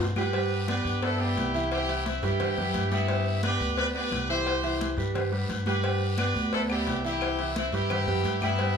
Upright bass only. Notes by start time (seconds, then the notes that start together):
0.00 G2
0.84 G2
1.36 C2
2.23 G2
2.57 F#2
2.74 G2
3.60 D2
4.11 C2
4.97 G2
5.49 G2
6.34 D2
6.86 C2
7.72 G2
8.06 F#2
8.23 G2